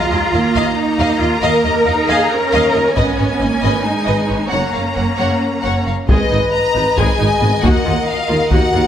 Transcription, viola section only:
0, 0, Header, 1, 2, 480
1, 0, Start_track
1, 0, Key_signature, -6, "minor"
1, 0, Tempo, 441826
1, 1554, Time_signature, 7, 3, 24, 8
1, 9639, End_track
2, 0, Start_track
2, 0, Title_t, "Viola section"
2, 0, Program_c, 0, 48
2, 0, Note_on_c, 0, 56, 52
2, 353, Note_on_c, 0, 58, 54
2, 356, Note_off_c, 0, 56, 0
2, 812, Note_off_c, 0, 58, 0
2, 825, Note_on_c, 0, 58, 52
2, 2004, Note_off_c, 0, 58, 0
2, 2026, Note_on_c, 0, 63, 55
2, 2506, Note_on_c, 0, 61, 54
2, 2507, Note_off_c, 0, 63, 0
2, 3222, Note_off_c, 0, 61, 0
2, 3225, Note_on_c, 0, 59, 48
2, 3692, Note_off_c, 0, 59, 0
2, 3703, Note_on_c, 0, 58, 47
2, 4179, Note_on_c, 0, 56, 39
2, 4180, Note_off_c, 0, 58, 0
2, 4909, Note_off_c, 0, 56, 0
2, 4910, Note_on_c, 0, 61, 37
2, 6348, Note_off_c, 0, 61, 0
2, 6614, Note_on_c, 0, 68, 49
2, 6620, Note_on_c, 0, 56, 43
2, 6838, Note_off_c, 0, 56, 0
2, 6841, Note_off_c, 0, 68, 0
2, 6851, Note_on_c, 0, 56, 34
2, 6851, Note_on_c, 0, 63, 34
2, 6938, Note_off_c, 0, 56, 0
2, 6938, Note_off_c, 0, 63, 0
2, 7331, Note_on_c, 0, 63, 34
2, 7334, Note_on_c, 0, 56, 33
2, 7418, Note_off_c, 0, 63, 0
2, 7421, Note_off_c, 0, 56, 0
2, 7568, Note_on_c, 0, 56, 50
2, 7570, Note_on_c, 0, 68, 46
2, 7793, Note_off_c, 0, 56, 0
2, 7795, Note_off_c, 0, 68, 0
2, 7806, Note_on_c, 0, 56, 36
2, 7806, Note_on_c, 0, 63, 35
2, 7892, Note_off_c, 0, 63, 0
2, 7893, Note_off_c, 0, 56, 0
2, 8049, Note_on_c, 0, 56, 37
2, 8049, Note_on_c, 0, 59, 37
2, 8136, Note_off_c, 0, 56, 0
2, 8136, Note_off_c, 0, 59, 0
2, 8287, Note_on_c, 0, 58, 53
2, 8289, Note_on_c, 0, 66, 47
2, 8511, Note_off_c, 0, 58, 0
2, 8512, Note_off_c, 0, 66, 0
2, 8530, Note_on_c, 0, 65, 30
2, 8532, Note_on_c, 0, 58, 30
2, 8617, Note_off_c, 0, 65, 0
2, 8619, Note_off_c, 0, 58, 0
2, 8998, Note_on_c, 0, 58, 35
2, 9000, Note_on_c, 0, 65, 36
2, 9085, Note_off_c, 0, 58, 0
2, 9087, Note_off_c, 0, 65, 0
2, 9243, Note_on_c, 0, 58, 49
2, 9246, Note_on_c, 0, 66, 42
2, 9465, Note_off_c, 0, 58, 0
2, 9466, Note_off_c, 0, 66, 0
2, 9484, Note_on_c, 0, 58, 39
2, 9484, Note_on_c, 0, 65, 38
2, 9571, Note_off_c, 0, 58, 0
2, 9571, Note_off_c, 0, 65, 0
2, 9639, End_track
0, 0, End_of_file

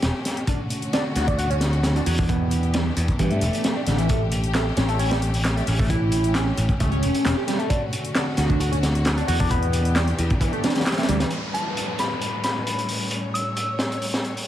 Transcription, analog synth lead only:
0, 0, Header, 1, 2, 480
1, 0, Start_track
1, 0, Tempo, 451128
1, 515, Time_signature, 4, 2, 24, 8
1, 15399, End_track
2, 0, Start_track
2, 0, Title_t, "Analog synth lead"
2, 0, Program_c, 0, 81
2, 508, Note_on_c, 0, 62, 80
2, 630, Note_off_c, 0, 62, 0
2, 989, Note_on_c, 0, 62, 98
2, 1085, Note_off_c, 0, 62, 0
2, 1230, Note_on_c, 0, 66, 72
2, 1325, Note_off_c, 0, 66, 0
2, 1354, Note_on_c, 0, 62, 72
2, 1466, Note_off_c, 0, 62, 0
2, 1470, Note_on_c, 0, 66, 83
2, 1592, Note_off_c, 0, 66, 0
2, 1597, Note_on_c, 0, 61, 77
2, 1649, Note_off_c, 0, 61, 0
2, 2079, Note_on_c, 0, 62, 72
2, 2164, Note_off_c, 0, 62, 0
2, 2194, Note_on_c, 0, 66, 71
2, 2287, Note_off_c, 0, 66, 0
2, 2322, Note_on_c, 0, 62, 76
2, 2428, Note_off_c, 0, 62, 0
2, 2434, Note_on_c, 0, 59, 80
2, 2903, Note_off_c, 0, 59, 0
2, 2913, Note_on_c, 0, 55, 79
2, 3033, Note_off_c, 0, 55, 0
2, 3394, Note_on_c, 0, 52, 99
2, 3514, Note_off_c, 0, 52, 0
2, 3521, Note_on_c, 0, 57, 103
2, 3630, Note_off_c, 0, 57, 0
2, 3635, Note_on_c, 0, 57, 97
2, 3987, Note_off_c, 0, 57, 0
2, 3999, Note_on_c, 0, 62, 72
2, 4050, Note_off_c, 0, 62, 0
2, 4113, Note_on_c, 0, 50, 103
2, 4206, Note_off_c, 0, 50, 0
2, 4239, Note_on_c, 0, 52, 96
2, 4343, Note_off_c, 0, 52, 0
2, 4354, Note_on_c, 0, 57, 84
2, 4473, Note_off_c, 0, 57, 0
2, 4833, Note_on_c, 0, 57, 91
2, 4927, Note_off_c, 0, 57, 0
2, 5075, Note_on_c, 0, 61, 76
2, 5167, Note_off_c, 0, 61, 0
2, 5197, Note_on_c, 0, 57, 74
2, 5308, Note_off_c, 0, 57, 0
2, 5312, Note_on_c, 0, 61, 81
2, 5428, Note_off_c, 0, 61, 0
2, 5435, Note_on_c, 0, 55, 84
2, 5488, Note_off_c, 0, 55, 0
2, 5916, Note_on_c, 0, 57, 76
2, 6003, Note_off_c, 0, 57, 0
2, 6030, Note_on_c, 0, 61, 78
2, 6125, Note_off_c, 0, 61, 0
2, 6157, Note_on_c, 0, 57, 78
2, 6267, Note_off_c, 0, 57, 0
2, 6273, Note_on_c, 0, 64, 85
2, 6742, Note_off_c, 0, 64, 0
2, 6754, Note_on_c, 0, 61, 80
2, 6873, Note_off_c, 0, 61, 0
2, 7233, Note_on_c, 0, 57, 98
2, 7349, Note_off_c, 0, 57, 0
2, 7355, Note_on_c, 0, 61, 102
2, 7461, Note_off_c, 0, 61, 0
2, 7468, Note_on_c, 0, 61, 103
2, 7824, Note_off_c, 0, 61, 0
2, 7837, Note_on_c, 0, 67, 77
2, 7889, Note_off_c, 0, 67, 0
2, 7949, Note_on_c, 0, 55, 103
2, 8044, Note_off_c, 0, 55, 0
2, 8073, Note_on_c, 0, 57, 105
2, 8180, Note_off_c, 0, 57, 0
2, 8189, Note_on_c, 0, 62, 82
2, 8311, Note_off_c, 0, 62, 0
2, 8669, Note_on_c, 0, 62, 94
2, 8765, Note_off_c, 0, 62, 0
2, 8911, Note_on_c, 0, 66, 82
2, 9005, Note_off_c, 0, 66, 0
2, 9034, Note_on_c, 0, 62, 71
2, 9142, Note_off_c, 0, 62, 0
2, 9148, Note_on_c, 0, 66, 80
2, 9267, Note_off_c, 0, 66, 0
2, 9274, Note_on_c, 0, 61, 81
2, 9328, Note_off_c, 0, 61, 0
2, 9752, Note_on_c, 0, 62, 75
2, 9841, Note_off_c, 0, 62, 0
2, 9867, Note_on_c, 0, 66, 75
2, 9964, Note_off_c, 0, 66, 0
2, 9998, Note_on_c, 0, 62, 73
2, 10108, Note_off_c, 0, 62, 0
2, 10112, Note_on_c, 0, 59, 79
2, 10582, Note_off_c, 0, 59, 0
2, 10590, Note_on_c, 0, 55, 78
2, 10711, Note_off_c, 0, 55, 0
2, 11071, Note_on_c, 0, 52, 104
2, 11190, Note_off_c, 0, 52, 0
2, 11196, Note_on_c, 0, 57, 112
2, 11307, Note_off_c, 0, 57, 0
2, 11312, Note_on_c, 0, 62, 79
2, 11406, Note_off_c, 0, 62, 0
2, 11436, Note_on_c, 0, 50, 101
2, 11489, Note_off_c, 0, 50, 0
2, 11676, Note_on_c, 0, 57, 100
2, 11763, Note_off_c, 0, 57, 0
2, 11789, Note_on_c, 0, 55, 101
2, 11885, Note_off_c, 0, 55, 0
2, 11915, Note_on_c, 0, 52, 78
2, 12021, Note_off_c, 0, 52, 0
2, 15399, End_track
0, 0, End_of_file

